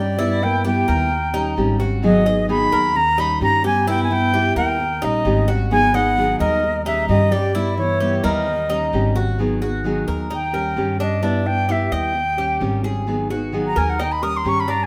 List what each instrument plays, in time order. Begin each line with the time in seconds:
Already playing: upright bass G2, nylon-string guitar G3 C#4 G4, cuban tres G4, flute D5
0.18 nylon-string guitar G3 B3 E4, cuban tres E4
0.41 nylon-string guitar A#3 B3 E4, flute G5
0.64 nylon-string guitar G3 B3 E4, cuban tres G4, flute G5
0.88 upright bass D#2, cuban tres A#4
1.11 muted nylon-string guitar stroke
1.33 nylon-string guitar G3 C#4 G4, cuban tres D#4
1.56 upright bass G#1, nylon-string guitar D#3 G3 C#4 G4
1.79 nylon-string guitar G3 C#4 G4, cuban tres F#4
2.02 nylon-string guitar D#3 F#3 B3 D#4 G#4, flute D#5
2.25 nylon-string guitar B3 D#4 G#4, cuban tres D#5
2.48 nylon-string guitar D#3 F#3 B3 D#4 G#4, flute B5
2.72 upright bass D#2, cuban tres A#4
2.94 nylon-string guitar C#4, flute A#5, muted nylon-string guitar stroke
3.17 nylon-string guitar G3 C#4 D#4 G4, cuban tres D#4, flute B5
3.40 upright bass G2, nylon-string guitar D#3 G3 C#4 G4, flute A#5
3.63 nylon-string guitar G3 B3 C#4 G4, cuban tres G4, flute G#5
3.87 nylon-string guitar G3 B3 E4, cuban tres E4, flute G5
4.03 nylon-string guitar B3, flute G#5
4.10 nylon-string guitar B3 E4, flute G5
4.33 nylon-string guitar G3 B3 E4, cuban tres G4
4.56 upright bass D#2, nylon-string guitar A#3, cuban tres A#4, flute G5
4.79 muted nylon-string guitar stroke
5.02 upright bass A#1, nylon-string guitar G3 C#4 G4, cuban tres D#4, flute D#5
5.25 upright bass G#1, nylon-string guitar D#3 G3 C#4 G4
5.48 nylon-string guitar G3 C#4 G4, cuban tres F#4
5.71 nylon-string guitar D#3 F#3 B3 D#4 G#4, flute G#5
5.94 nylon-string guitar B3 D#4 G#4, cuban tres D#5, flute F#5
6.17 nylon-string guitar D#3 F#3 B3 D#4 G#4
6.39 upright bass D#2, nylon-string guitar G3, cuban tres A#4, flute D#5
6.63 muted nylon-string guitar stroke
6.85 nylon-string guitar G3 G#3 C#4 G4, cuban tres D#4, flute E5
7.09 upright bass G2, nylon-string guitar D#3 G3 C#4 G4, flute D#5
7.31 nylon-string guitar G3 C#4 G4, cuban tres G4, flute D5
7.54 nylon-string guitar G3 B3 E4, cuban tres E4
7.77 nylon-string guitar E3 B3 E4, flute C#5
8.00 nylon-string guitar G3 B3 E4, cuban tres G4
8.23 upright bass D#2, nylon-string guitar G3, cuban tres A#4, flute D#5
8.47 muted nylon-string guitar stroke
8.69 nylon-string guitar G3 C#4 G4, cuban tres D#4
8.92 upright bass G#1, nylon-string guitar D#3 G3 C#4 G4
9.15 nylon-string guitar G3 C#4 G4, cuban tres F#4
9.38 nylon-string guitar D#3 F#3 B3 D#4 G#4
9.62 nylon-string guitar B3 D#4 G#4, cuban tres F#4
9.84 nylon-string guitar D#3 F#3 B3 D#4 G#4
10.08 upright bass D#2, cuban tres A#4
10.30 cuban tres D#4, flute G5, muted nylon-string guitar stroke
10.53 nylon-string guitar G3 C#4 G4, cuban tres A#4
10.76 upright bass G2, nylon-string guitar D#3 G3 C#4 G4
10.99 nylon-string guitar G3 C#4 G4, cuban tres D4, flute D#5
11.22 nylon-string guitar G3 B3 E4, cuban tres D4, flute D5
11.45 nylon-string guitar B3 E4, flute G5
11.68 nylon-string guitar G3 B3 E4, cuban tres G4, flute E5
11.92 upright bass D#2, cuban tres D#5, flute G5
12.15 muted nylon-string guitar stroke
12.37 nylon-string guitar G3 C#4 G4, cuban tres G4
12.60 upright bass G#1, nylon-string guitar D#3 G3 C#4 G4
12.83 nylon-string guitar G3 C#4 G4, cuban tres G#4
13.07 nylon-string guitar D#3 F#3 B3 D#4 G#4
13.30 nylon-string guitar B3 D#4 G#4, cuban tres F#4
13.52 nylon-string guitar D#3 F#3 B3 D#4 G#4
13.67 flute A#5
13.76 upright bass D#2, cuban tres A#4, flute G#5
13.90 flute F#5
13.99 cuban tres D#4, flute G5, muted nylon-string guitar stroke
14.12 flute B5
14.22 nylon-string guitar G3 C#4 G4, cuban tres A#4, flute D#6
14.37 flute C6
14.44 upright bass G2, nylon-string guitar D#3 G3 C#4 G4
14.48 flute C#6
14.60 flute B5
14.68 nylon-string guitar G3 C#4 G4, cuban tres D4, flute A#5
14.83 flute G#5